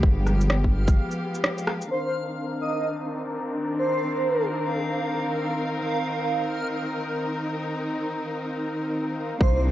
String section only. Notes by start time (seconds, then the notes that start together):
Already playing: F3 G#3 B3 G4
1.90 D#3 C4 D4 A#4
5.65 D#4
9.40 A#3 C4 D4 D#4